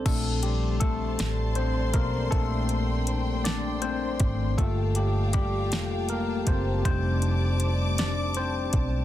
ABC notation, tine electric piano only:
X:1
M:6/8
L:1/8
Q:3/8=53
K:Bb
V:1 name="Tine electric piano"
[A,A] [G,G] [A,A]2 [Cc] [B,B] | A3 [Dd] c2 | A [G,G] [G,G]2 [B,B] [Cc] | [Cc]3 [Dd] [Cc]2 |]
V:2 name="Tine electric piano"
[F,CD]6 | [A,CD]4 [A,CD] z | [A,B,F]3 [A,B,] z2 | [G,A,DE] z4 z |]